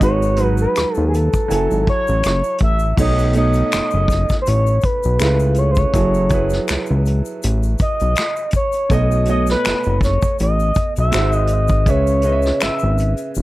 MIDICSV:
0, 0, Header, 1, 5, 480
1, 0, Start_track
1, 0, Tempo, 740741
1, 7, Time_signature, 4, 2, 24, 8
1, 8696, End_track
2, 0, Start_track
2, 0, Title_t, "Analog synth lead"
2, 0, Program_c, 0, 81
2, 20, Note_on_c, 0, 73, 104
2, 286, Note_off_c, 0, 73, 0
2, 286, Note_on_c, 0, 71, 104
2, 360, Note_off_c, 0, 71, 0
2, 396, Note_on_c, 0, 71, 96
2, 674, Note_off_c, 0, 71, 0
2, 701, Note_on_c, 0, 68, 58
2, 744, Note_on_c, 0, 69, 85
2, 754, Note_off_c, 0, 68, 0
2, 1216, Note_off_c, 0, 69, 0
2, 1228, Note_on_c, 0, 73, 100
2, 1672, Note_off_c, 0, 73, 0
2, 1705, Note_on_c, 0, 76, 108
2, 1920, Note_off_c, 0, 76, 0
2, 1948, Note_on_c, 0, 75, 102
2, 2162, Note_off_c, 0, 75, 0
2, 2187, Note_on_c, 0, 75, 112
2, 2830, Note_off_c, 0, 75, 0
2, 2862, Note_on_c, 0, 72, 71
2, 2904, Note_on_c, 0, 73, 98
2, 2913, Note_off_c, 0, 72, 0
2, 3140, Note_on_c, 0, 71, 89
2, 3150, Note_off_c, 0, 73, 0
2, 3620, Note_on_c, 0, 73, 88
2, 3629, Note_off_c, 0, 71, 0
2, 3695, Note_off_c, 0, 73, 0
2, 3703, Note_on_c, 0, 72, 61
2, 3746, Note_on_c, 0, 73, 96
2, 3756, Note_off_c, 0, 72, 0
2, 4463, Note_off_c, 0, 73, 0
2, 5066, Note_on_c, 0, 75, 104
2, 5511, Note_off_c, 0, 75, 0
2, 5548, Note_on_c, 0, 73, 92
2, 5787, Note_on_c, 0, 75, 102
2, 5797, Note_off_c, 0, 73, 0
2, 6017, Note_off_c, 0, 75, 0
2, 6030, Note_on_c, 0, 75, 88
2, 6142, Note_off_c, 0, 75, 0
2, 6164, Note_on_c, 0, 71, 94
2, 6476, Note_off_c, 0, 71, 0
2, 6507, Note_on_c, 0, 73, 88
2, 6721, Note_off_c, 0, 73, 0
2, 6752, Note_on_c, 0, 75, 109
2, 7086, Note_off_c, 0, 75, 0
2, 7124, Note_on_c, 0, 76, 105
2, 7351, Note_off_c, 0, 76, 0
2, 7351, Note_on_c, 0, 75, 105
2, 7472, Note_off_c, 0, 75, 0
2, 7472, Note_on_c, 0, 75, 103
2, 7707, Note_on_c, 0, 73, 101
2, 7717, Note_off_c, 0, 75, 0
2, 8177, Note_off_c, 0, 73, 0
2, 8182, Note_on_c, 0, 76, 93
2, 8629, Note_off_c, 0, 76, 0
2, 8696, End_track
3, 0, Start_track
3, 0, Title_t, "Grand piano"
3, 0, Program_c, 1, 0
3, 0, Control_c, 1, 64, 127
3, 0, Note_on_c, 1, 56, 66
3, 7, Note_on_c, 1, 63, 65
3, 14, Control_c, 1, 64, 0
3, 15, Note_on_c, 1, 66, 61
3, 22, Note_on_c, 1, 71, 79
3, 131, Control_c, 1, 64, 127
3, 202, Note_off_c, 1, 56, 0
3, 206, Note_off_c, 1, 63, 0
3, 210, Note_off_c, 1, 66, 0
3, 213, Note_off_c, 1, 71, 0
3, 241, Note_on_c, 1, 54, 69
3, 247, Note_on_c, 1, 63, 60
3, 256, Note_on_c, 1, 66, 62
3, 262, Note_on_c, 1, 71, 72
3, 952, Note_off_c, 1, 54, 0
3, 961, Note_on_c, 1, 54, 69
3, 967, Note_off_c, 1, 63, 0
3, 968, Note_on_c, 1, 64, 65
3, 971, Note_off_c, 1, 66, 0
3, 975, Note_off_c, 1, 71, 0
3, 976, Control_c, 1, 64, 0
3, 976, Note_on_c, 1, 80, 60
3, 984, Note_on_c, 1, 69, 81
3, 1089, Control_c, 1, 64, 127
3, 1747, Note_off_c, 1, 54, 0
3, 1750, Note_off_c, 1, 64, 0
3, 1754, Note_off_c, 1, 80, 0
3, 1758, Note_off_c, 1, 69, 0
3, 1923, Note_on_c, 1, 47, 71
3, 1929, Note_on_c, 1, 57, 67
3, 1936, Control_c, 1, 64, 0
3, 1937, Note_on_c, 1, 63, 63
3, 1944, Note_on_c, 1, 73, 79
3, 2055, Control_c, 1, 64, 127
3, 2124, Note_off_c, 1, 47, 0
3, 2127, Note_off_c, 1, 57, 0
3, 2131, Note_off_c, 1, 63, 0
3, 2134, Note_off_c, 1, 73, 0
3, 2161, Note_on_c, 1, 47, 66
3, 2169, Note_on_c, 1, 57, 62
3, 2175, Note_on_c, 1, 63, 60
3, 2182, Note_on_c, 1, 73, 73
3, 2947, Note_off_c, 1, 47, 0
3, 2951, Note_off_c, 1, 57, 0
3, 2954, Note_off_c, 1, 63, 0
3, 2957, Note_off_c, 1, 73, 0
3, 3362, Note_on_c, 1, 49, 72
3, 3368, Note_on_c, 1, 57, 65
3, 3374, Control_c, 1, 64, 0
3, 3374, Note_on_c, 1, 64, 60
3, 3379, Note_on_c, 1, 65, 65
3, 3385, Note_on_c, 1, 71, 80
3, 3509, Control_c, 1, 64, 127
3, 3762, Note_off_c, 1, 49, 0
3, 3765, Note_off_c, 1, 57, 0
3, 3768, Note_off_c, 1, 64, 0
3, 3771, Note_off_c, 1, 65, 0
3, 3773, Note_off_c, 1, 71, 0
3, 3845, Note_on_c, 1, 54, 73
3, 3851, Note_on_c, 1, 64, 62
3, 3854, Control_c, 1, 64, 0
3, 3859, Note_on_c, 1, 68, 63
3, 3866, Note_on_c, 1, 69, 78
3, 3965, Control_c, 1, 64, 127
3, 4045, Note_off_c, 1, 54, 0
3, 4048, Note_off_c, 1, 64, 0
3, 4052, Note_off_c, 1, 68, 0
3, 4055, Note_off_c, 1, 69, 0
3, 4087, Note_on_c, 1, 54, 70
3, 4095, Note_on_c, 1, 64, 66
3, 4102, Note_on_c, 1, 68, 60
3, 4108, Note_on_c, 1, 71, 72
3, 4869, Note_off_c, 1, 54, 0
3, 4873, Note_off_c, 1, 64, 0
3, 4877, Note_off_c, 1, 68, 0
3, 4880, Note_off_c, 1, 71, 0
3, 5763, Note_on_c, 1, 47, 73
3, 5768, Note_on_c, 1, 57, 66
3, 5776, Control_c, 1, 64, 0
3, 5776, Note_on_c, 1, 73, 70
3, 5783, Note_on_c, 1, 75, 86
3, 5895, Control_c, 1, 64, 127
3, 5964, Note_off_c, 1, 47, 0
3, 5966, Note_off_c, 1, 57, 0
3, 5970, Note_off_c, 1, 73, 0
3, 5974, Note_off_c, 1, 75, 0
3, 6003, Note_on_c, 1, 47, 73
3, 6010, Note_on_c, 1, 57, 59
3, 6019, Note_on_c, 1, 73, 63
3, 6025, Note_on_c, 1, 75, 81
3, 6787, Note_off_c, 1, 47, 0
3, 6791, Note_off_c, 1, 57, 0
3, 6795, Note_off_c, 1, 73, 0
3, 6798, Note_off_c, 1, 75, 0
3, 7201, Note_on_c, 1, 56, 74
3, 7208, Note_on_c, 1, 66, 64
3, 7215, Note_on_c, 1, 72, 67
3, 7216, Control_c, 1, 64, 0
3, 7223, Note_on_c, 1, 76, 82
3, 7316, Control_c, 1, 64, 127
3, 7601, Note_off_c, 1, 56, 0
3, 7605, Note_off_c, 1, 66, 0
3, 7609, Note_off_c, 1, 72, 0
3, 7613, Note_off_c, 1, 76, 0
3, 7683, Note_on_c, 1, 49, 75
3, 7689, Note_on_c, 1, 61, 69
3, 7694, Control_c, 1, 64, 0
3, 7696, Note_on_c, 1, 71, 67
3, 7703, Note_on_c, 1, 76, 84
3, 7811, Control_c, 1, 64, 127
3, 7884, Note_off_c, 1, 49, 0
3, 7887, Note_off_c, 1, 61, 0
3, 7890, Note_off_c, 1, 71, 0
3, 7894, Note_off_c, 1, 76, 0
3, 7922, Note_on_c, 1, 49, 64
3, 7927, Note_on_c, 1, 61, 64
3, 7936, Note_on_c, 1, 71, 62
3, 7943, Note_on_c, 1, 75, 58
3, 7981, Note_off_c, 1, 75, 0
3, 7984, Note_on_c, 1, 76, 81
3, 8696, Note_off_c, 1, 49, 0
3, 8696, Note_off_c, 1, 61, 0
3, 8696, Note_off_c, 1, 71, 0
3, 8696, Note_off_c, 1, 76, 0
3, 8696, End_track
4, 0, Start_track
4, 0, Title_t, "Analog synth bass"
4, 0, Program_c, 2, 38
4, 13, Note_on_c, 2, 32, 108
4, 433, Note_off_c, 2, 32, 0
4, 503, Note_on_c, 2, 39, 46
4, 551, Note_off_c, 2, 39, 0
4, 632, Note_on_c, 2, 39, 93
4, 837, Note_off_c, 2, 39, 0
4, 982, Note_on_c, 2, 30, 105
4, 1091, Note_off_c, 2, 30, 0
4, 1113, Note_on_c, 2, 32, 84
4, 1202, Note_off_c, 2, 32, 0
4, 1353, Note_on_c, 2, 33, 99
4, 1442, Note_off_c, 2, 33, 0
4, 1464, Note_on_c, 2, 30, 89
4, 1572, Note_off_c, 2, 30, 0
4, 1696, Note_on_c, 2, 33, 79
4, 1903, Note_off_c, 2, 33, 0
4, 1936, Note_on_c, 2, 35, 116
4, 2354, Note_off_c, 2, 35, 0
4, 2424, Note_on_c, 2, 30, 48
4, 2472, Note_off_c, 2, 30, 0
4, 2553, Note_on_c, 2, 30, 91
4, 2757, Note_off_c, 2, 30, 0
4, 2902, Note_on_c, 2, 33, 96
4, 3106, Note_off_c, 2, 33, 0
4, 3273, Note_on_c, 2, 35, 85
4, 3362, Note_off_c, 2, 35, 0
4, 3380, Note_on_c, 2, 37, 95
4, 3797, Note_off_c, 2, 37, 0
4, 3854, Note_on_c, 2, 30, 102
4, 4273, Note_off_c, 2, 30, 0
4, 4342, Note_on_c, 2, 37, 51
4, 4391, Note_off_c, 2, 37, 0
4, 4475, Note_on_c, 2, 37, 88
4, 4679, Note_off_c, 2, 37, 0
4, 4822, Note_on_c, 2, 33, 92
4, 5026, Note_off_c, 2, 33, 0
4, 5195, Note_on_c, 2, 35, 93
4, 5283, Note_off_c, 2, 35, 0
4, 5775, Note_on_c, 2, 35, 109
4, 6194, Note_off_c, 2, 35, 0
4, 6262, Note_on_c, 2, 30, 47
4, 6311, Note_off_c, 2, 30, 0
4, 6393, Note_on_c, 2, 30, 100
4, 6597, Note_off_c, 2, 30, 0
4, 6742, Note_on_c, 2, 33, 91
4, 6946, Note_off_c, 2, 33, 0
4, 7114, Note_on_c, 2, 35, 100
4, 7203, Note_off_c, 2, 35, 0
4, 7223, Note_on_c, 2, 32, 99
4, 7695, Note_on_c, 2, 37, 103
4, 7705, Note_off_c, 2, 32, 0
4, 8114, Note_off_c, 2, 37, 0
4, 8184, Note_on_c, 2, 32, 51
4, 8233, Note_off_c, 2, 32, 0
4, 8315, Note_on_c, 2, 32, 93
4, 8519, Note_off_c, 2, 32, 0
4, 8661, Note_on_c, 2, 28, 95
4, 8696, Note_off_c, 2, 28, 0
4, 8696, End_track
5, 0, Start_track
5, 0, Title_t, "Drums"
5, 4, Note_on_c, 9, 42, 81
5, 6, Note_on_c, 9, 36, 98
5, 11, Note_on_c, 9, 82, 61
5, 69, Note_off_c, 9, 42, 0
5, 71, Note_off_c, 9, 36, 0
5, 76, Note_off_c, 9, 82, 0
5, 145, Note_on_c, 9, 82, 38
5, 209, Note_off_c, 9, 82, 0
5, 234, Note_on_c, 9, 42, 63
5, 246, Note_on_c, 9, 82, 44
5, 299, Note_off_c, 9, 42, 0
5, 310, Note_off_c, 9, 82, 0
5, 372, Note_on_c, 9, 82, 43
5, 436, Note_off_c, 9, 82, 0
5, 489, Note_on_c, 9, 42, 75
5, 492, Note_on_c, 9, 26, 57
5, 492, Note_on_c, 9, 82, 62
5, 501, Note_on_c, 9, 37, 93
5, 554, Note_off_c, 9, 42, 0
5, 557, Note_off_c, 9, 26, 0
5, 557, Note_off_c, 9, 82, 0
5, 566, Note_off_c, 9, 37, 0
5, 613, Note_on_c, 9, 82, 33
5, 678, Note_off_c, 9, 82, 0
5, 740, Note_on_c, 9, 82, 45
5, 742, Note_on_c, 9, 42, 59
5, 805, Note_off_c, 9, 82, 0
5, 807, Note_off_c, 9, 42, 0
5, 863, Note_on_c, 9, 82, 47
5, 866, Note_on_c, 9, 36, 78
5, 928, Note_off_c, 9, 82, 0
5, 930, Note_off_c, 9, 36, 0
5, 976, Note_on_c, 9, 42, 94
5, 976, Note_on_c, 9, 82, 58
5, 1041, Note_off_c, 9, 42, 0
5, 1041, Note_off_c, 9, 82, 0
5, 1107, Note_on_c, 9, 82, 36
5, 1172, Note_off_c, 9, 82, 0
5, 1212, Note_on_c, 9, 42, 58
5, 1214, Note_on_c, 9, 36, 82
5, 1277, Note_off_c, 9, 42, 0
5, 1279, Note_off_c, 9, 36, 0
5, 1344, Note_on_c, 9, 82, 46
5, 1409, Note_off_c, 9, 82, 0
5, 1445, Note_on_c, 9, 42, 78
5, 1450, Note_on_c, 9, 26, 64
5, 1450, Note_on_c, 9, 82, 60
5, 1467, Note_on_c, 9, 37, 96
5, 1510, Note_off_c, 9, 42, 0
5, 1515, Note_off_c, 9, 26, 0
5, 1515, Note_off_c, 9, 82, 0
5, 1532, Note_off_c, 9, 37, 0
5, 1580, Note_on_c, 9, 82, 39
5, 1645, Note_off_c, 9, 82, 0
5, 1673, Note_on_c, 9, 42, 59
5, 1690, Note_on_c, 9, 36, 77
5, 1738, Note_off_c, 9, 42, 0
5, 1754, Note_off_c, 9, 36, 0
5, 1809, Note_on_c, 9, 82, 42
5, 1874, Note_off_c, 9, 82, 0
5, 1928, Note_on_c, 9, 36, 99
5, 1930, Note_on_c, 9, 49, 91
5, 1934, Note_on_c, 9, 82, 58
5, 1993, Note_off_c, 9, 36, 0
5, 1995, Note_off_c, 9, 49, 0
5, 1998, Note_off_c, 9, 82, 0
5, 2066, Note_on_c, 9, 82, 40
5, 2130, Note_off_c, 9, 82, 0
5, 2156, Note_on_c, 9, 42, 60
5, 2167, Note_on_c, 9, 82, 44
5, 2221, Note_off_c, 9, 42, 0
5, 2232, Note_off_c, 9, 82, 0
5, 2291, Note_on_c, 9, 82, 47
5, 2298, Note_on_c, 9, 42, 33
5, 2355, Note_off_c, 9, 82, 0
5, 2363, Note_off_c, 9, 42, 0
5, 2409, Note_on_c, 9, 42, 79
5, 2411, Note_on_c, 9, 26, 63
5, 2411, Note_on_c, 9, 82, 59
5, 2417, Note_off_c, 9, 26, 0
5, 2417, Note_on_c, 9, 26, 73
5, 2421, Note_on_c, 9, 38, 93
5, 2473, Note_off_c, 9, 42, 0
5, 2476, Note_off_c, 9, 82, 0
5, 2482, Note_off_c, 9, 26, 0
5, 2486, Note_off_c, 9, 38, 0
5, 2532, Note_on_c, 9, 82, 35
5, 2597, Note_off_c, 9, 82, 0
5, 2645, Note_on_c, 9, 36, 84
5, 2655, Note_on_c, 9, 82, 49
5, 2661, Note_on_c, 9, 42, 59
5, 2663, Note_on_c, 9, 38, 33
5, 2710, Note_off_c, 9, 36, 0
5, 2720, Note_off_c, 9, 82, 0
5, 2726, Note_off_c, 9, 42, 0
5, 2728, Note_off_c, 9, 38, 0
5, 2781, Note_on_c, 9, 82, 44
5, 2786, Note_on_c, 9, 36, 73
5, 2793, Note_on_c, 9, 38, 29
5, 2845, Note_off_c, 9, 82, 0
5, 2851, Note_off_c, 9, 36, 0
5, 2857, Note_off_c, 9, 38, 0
5, 2892, Note_on_c, 9, 82, 59
5, 2897, Note_on_c, 9, 42, 92
5, 2956, Note_off_c, 9, 82, 0
5, 2962, Note_off_c, 9, 42, 0
5, 3024, Note_on_c, 9, 82, 40
5, 3089, Note_off_c, 9, 82, 0
5, 3119, Note_on_c, 9, 82, 39
5, 3132, Note_on_c, 9, 42, 63
5, 3133, Note_on_c, 9, 36, 82
5, 3184, Note_off_c, 9, 82, 0
5, 3197, Note_off_c, 9, 42, 0
5, 3198, Note_off_c, 9, 36, 0
5, 3260, Note_on_c, 9, 82, 48
5, 3325, Note_off_c, 9, 82, 0
5, 3363, Note_on_c, 9, 42, 82
5, 3367, Note_on_c, 9, 26, 63
5, 3367, Note_on_c, 9, 82, 64
5, 3381, Note_off_c, 9, 26, 0
5, 3381, Note_on_c, 9, 26, 77
5, 3385, Note_on_c, 9, 38, 93
5, 3428, Note_off_c, 9, 42, 0
5, 3432, Note_off_c, 9, 82, 0
5, 3446, Note_off_c, 9, 26, 0
5, 3450, Note_off_c, 9, 38, 0
5, 3496, Note_on_c, 9, 82, 42
5, 3561, Note_off_c, 9, 82, 0
5, 3592, Note_on_c, 9, 42, 65
5, 3603, Note_on_c, 9, 82, 47
5, 3657, Note_off_c, 9, 42, 0
5, 3668, Note_off_c, 9, 82, 0
5, 3726, Note_on_c, 9, 82, 46
5, 3738, Note_on_c, 9, 36, 82
5, 3791, Note_off_c, 9, 82, 0
5, 3803, Note_off_c, 9, 36, 0
5, 3845, Note_on_c, 9, 42, 78
5, 3847, Note_on_c, 9, 36, 102
5, 3853, Note_on_c, 9, 82, 59
5, 3910, Note_off_c, 9, 42, 0
5, 3912, Note_off_c, 9, 36, 0
5, 3918, Note_off_c, 9, 82, 0
5, 3981, Note_on_c, 9, 82, 38
5, 4046, Note_off_c, 9, 82, 0
5, 4077, Note_on_c, 9, 42, 62
5, 4084, Note_on_c, 9, 82, 50
5, 4086, Note_on_c, 9, 36, 83
5, 4141, Note_off_c, 9, 42, 0
5, 4148, Note_off_c, 9, 82, 0
5, 4151, Note_off_c, 9, 36, 0
5, 4210, Note_on_c, 9, 82, 48
5, 4231, Note_on_c, 9, 38, 35
5, 4275, Note_off_c, 9, 82, 0
5, 4296, Note_off_c, 9, 38, 0
5, 4328, Note_on_c, 9, 42, 76
5, 4329, Note_on_c, 9, 26, 58
5, 4329, Note_on_c, 9, 82, 61
5, 4337, Note_off_c, 9, 26, 0
5, 4337, Note_on_c, 9, 26, 71
5, 4341, Note_on_c, 9, 38, 92
5, 4393, Note_off_c, 9, 42, 0
5, 4393, Note_off_c, 9, 82, 0
5, 4401, Note_off_c, 9, 26, 0
5, 4405, Note_off_c, 9, 38, 0
5, 4446, Note_on_c, 9, 82, 34
5, 4511, Note_off_c, 9, 82, 0
5, 4573, Note_on_c, 9, 82, 44
5, 4581, Note_on_c, 9, 42, 56
5, 4638, Note_off_c, 9, 82, 0
5, 4646, Note_off_c, 9, 42, 0
5, 4700, Note_on_c, 9, 82, 48
5, 4764, Note_off_c, 9, 82, 0
5, 4811, Note_on_c, 9, 82, 59
5, 4817, Note_on_c, 9, 42, 89
5, 4876, Note_off_c, 9, 82, 0
5, 4882, Note_off_c, 9, 42, 0
5, 4944, Note_on_c, 9, 82, 38
5, 5009, Note_off_c, 9, 82, 0
5, 5043, Note_on_c, 9, 82, 41
5, 5052, Note_on_c, 9, 42, 62
5, 5053, Note_on_c, 9, 36, 91
5, 5108, Note_off_c, 9, 82, 0
5, 5117, Note_off_c, 9, 42, 0
5, 5118, Note_off_c, 9, 36, 0
5, 5181, Note_on_c, 9, 42, 34
5, 5185, Note_on_c, 9, 82, 48
5, 5246, Note_off_c, 9, 42, 0
5, 5250, Note_off_c, 9, 82, 0
5, 5282, Note_on_c, 9, 42, 78
5, 5293, Note_on_c, 9, 26, 70
5, 5293, Note_on_c, 9, 82, 67
5, 5301, Note_off_c, 9, 26, 0
5, 5301, Note_on_c, 9, 26, 75
5, 5305, Note_on_c, 9, 38, 94
5, 5347, Note_off_c, 9, 42, 0
5, 5358, Note_off_c, 9, 82, 0
5, 5366, Note_off_c, 9, 26, 0
5, 5370, Note_off_c, 9, 38, 0
5, 5421, Note_on_c, 9, 82, 38
5, 5485, Note_off_c, 9, 82, 0
5, 5512, Note_on_c, 9, 42, 63
5, 5526, Note_on_c, 9, 82, 48
5, 5529, Note_on_c, 9, 36, 86
5, 5577, Note_off_c, 9, 42, 0
5, 5590, Note_off_c, 9, 82, 0
5, 5594, Note_off_c, 9, 36, 0
5, 5652, Note_on_c, 9, 82, 43
5, 5661, Note_on_c, 9, 42, 33
5, 5717, Note_off_c, 9, 82, 0
5, 5726, Note_off_c, 9, 42, 0
5, 5766, Note_on_c, 9, 42, 82
5, 5767, Note_on_c, 9, 36, 99
5, 5777, Note_on_c, 9, 82, 58
5, 5831, Note_off_c, 9, 42, 0
5, 5832, Note_off_c, 9, 36, 0
5, 5842, Note_off_c, 9, 82, 0
5, 5905, Note_on_c, 9, 82, 42
5, 5970, Note_off_c, 9, 82, 0
5, 5996, Note_on_c, 9, 42, 64
5, 6010, Note_on_c, 9, 82, 47
5, 6061, Note_off_c, 9, 42, 0
5, 6074, Note_off_c, 9, 82, 0
5, 6135, Note_on_c, 9, 82, 50
5, 6152, Note_on_c, 9, 38, 34
5, 6200, Note_off_c, 9, 82, 0
5, 6216, Note_off_c, 9, 38, 0
5, 6249, Note_on_c, 9, 42, 69
5, 6253, Note_on_c, 9, 26, 61
5, 6253, Note_on_c, 9, 82, 62
5, 6258, Note_off_c, 9, 26, 0
5, 6258, Note_on_c, 9, 26, 82
5, 6262, Note_on_c, 9, 38, 97
5, 6314, Note_off_c, 9, 42, 0
5, 6318, Note_off_c, 9, 82, 0
5, 6322, Note_off_c, 9, 26, 0
5, 6326, Note_off_c, 9, 38, 0
5, 6374, Note_on_c, 9, 82, 33
5, 6439, Note_off_c, 9, 82, 0
5, 6485, Note_on_c, 9, 36, 84
5, 6498, Note_on_c, 9, 82, 47
5, 6500, Note_on_c, 9, 42, 60
5, 6502, Note_on_c, 9, 38, 31
5, 6550, Note_off_c, 9, 36, 0
5, 6563, Note_off_c, 9, 82, 0
5, 6565, Note_off_c, 9, 42, 0
5, 6567, Note_off_c, 9, 38, 0
5, 6622, Note_on_c, 9, 82, 47
5, 6626, Note_on_c, 9, 36, 83
5, 6687, Note_off_c, 9, 82, 0
5, 6691, Note_off_c, 9, 36, 0
5, 6733, Note_on_c, 9, 82, 64
5, 6737, Note_on_c, 9, 42, 95
5, 6798, Note_off_c, 9, 82, 0
5, 6802, Note_off_c, 9, 42, 0
5, 6867, Note_on_c, 9, 82, 38
5, 6932, Note_off_c, 9, 82, 0
5, 6964, Note_on_c, 9, 82, 43
5, 6972, Note_on_c, 9, 42, 62
5, 6974, Note_on_c, 9, 36, 89
5, 7029, Note_off_c, 9, 82, 0
5, 7037, Note_off_c, 9, 42, 0
5, 7038, Note_off_c, 9, 36, 0
5, 7101, Note_on_c, 9, 42, 34
5, 7105, Note_on_c, 9, 82, 48
5, 7166, Note_off_c, 9, 42, 0
5, 7170, Note_off_c, 9, 82, 0
5, 7203, Note_on_c, 9, 42, 79
5, 7211, Note_on_c, 9, 26, 67
5, 7211, Note_on_c, 9, 82, 69
5, 7221, Note_off_c, 9, 26, 0
5, 7221, Note_on_c, 9, 26, 76
5, 7225, Note_on_c, 9, 38, 93
5, 7268, Note_off_c, 9, 42, 0
5, 7276, Note_off_c, 9, 82, 0
5, 7286, Note_off_c, 9, 26, 0
5, 7290, Note_off_c, 9, 38, 0
5, 7338, Note_on_c, 9, 82, 40
5, 7403, Note_off_c, 9, 82, 0
5, 7433, Note_on_c, 9, 42, 65
5, 7443, Note_on_c, 9, 82, 45
5, 7498, Note_off_c, 9, 42, 0
5, 7508, Note_off_c, 9, 82, 0
5, 7567, Note_on_c, 9, 82, 47
5, 7579, Note_on_c, 9, 36, 88
5, 7632, Note_off_c, 9, 82, 0
5, 7643, Note_off_c, 9, 36, 0
5, 7686, Note_on_c, 9, 42, 76
5, 7687, Note_on_c, 9, 36, 104
5, 7691, Note_on_c, 9, 82, 59
5, 7750, Note_off_c, 9, 42, 0
5, 7752, Note_off_c, 9, 36, 0
5, 7756, Note_off_c, 9, 82, 0
5, 7821, Note_on_c, 9, 82, 42
5, 7886, Note_off_c, 9, 82, 0
5, 7916, Note_on_c, 9, 42, 60
5, 7924, Note_on_c, 9, 82, 45
5, 7981, Note_off_c, 9, 42, 0
5, 7989, Note_off_c, 9, 82, 0
5, 8050, Note_on_c, 9, 82, 47
5, 8071, Note_on_c, 9, 38, 36
5, 8115, Note_off_c, 9, 82, 0
5, 8135, Note_off_c, 9, 38, 0
5, 8167, Note_on_c, 9, 42, 69
5, 8168, Note_on_c, 9, 26, 60
5, 8168, Note_on_c, 9, 82, 57
5, 8176, Note_off_c, 9, 26, 0
5, 8176, Note_on_c, 9, 26, 77
5, 8180, Note_on_c, 9, 38, 103
5, 8232, Note_off_c, 9, 42, 0
5, 8233, Note_off_c, 9, 82, 0
5, 8241, Note_off_c, 9, 26, 0
5, 8245, Note_off_c, 9, 38, 0
5, 8287, Note_on_c, 9, 82, 34
5, 8352, Note_off_c, 9, 82, 0
5, 8412, Note_on_c, 9, 82, 45
5, 8420, Note_on_c, 9, 42, 58
5, 8477, Note_off_c, 9, 82, 0
5, 8485, Note_off_c, 9, 42, 0
5, 8531, Note_on_c, 9, 42, 30
5, 8537, Note_on_c, 9, 82, 46
5, 8596, Note_off_c, 9, 42, 0
5, 8602, Note_off_c, 9, 82, 0
5, 8650, Note_on_c, 9, 82, 61
5, 8696, Note_off_c, 9, 82, 0
5, 8696, End_track
0, 0, End_of_file